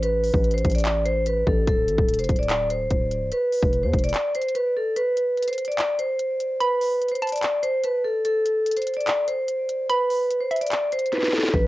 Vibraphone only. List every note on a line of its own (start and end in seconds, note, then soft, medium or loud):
0.03 0.51 B4 loud
0.54 0.72 C5 medium
0.75 0.84 D5 medium
0.86 1.03 D5 medium
1.05 1.23 C5 loud
1.27 1.44 B4 medium
1.47 1.65 A4 medium
1.68 2.16 A4 loud
2.19 2.37 C5 medium
2.39 2.48 D5 medium
2.49 2.67 D5 medium
2.70 3.28 C5 medium
3.32 3.80 B4 medium
3.83 4.01 C5 medium
4.04 4.12 D5 medium
4.14 4.31 D5 medium
4.35 4.52 C5 medium
4.55 4.72 B4 medium
4.76 4.94 A4 medium
4.96 5.44 B4 loud
5.48 5.65 C5 medium
5.68 5.77 D5 medium
5.78 5.96 D5 medium
5.99 6.57 C5 medium
6.60 7.09 B4 loud
7.12 7.29 C5 medium
7.32 7.41 D5 medium
7.43 7.60 D5 medium
7.63 7.81 C5 loud
7.84 8.02 B4 medium
8.05 8.22 A4 medium
8.25 8.73 A4 medium
8.77 8.94 C5 medium
8.96 9.05 D5 medium
9.07 9.25 D5 loud
9.28 9.86 C5 medium
9.90 10.38 B4 medium
10.41 10.58 C5 medium
10.61 10.70 D5 medium
10.72 10.89 D5 medium
10.93 11.10 C5 medium
11.12 11.30 B4 medium
11.34 11.51 A4 medium
11.54 11.67 B4 loud